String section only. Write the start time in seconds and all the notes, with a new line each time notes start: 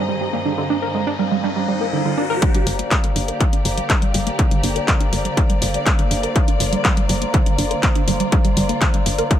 Already playing: G2 D#3 C4 G#4 D#5
2.42 D3 A#3 G4 D5
6.36 F4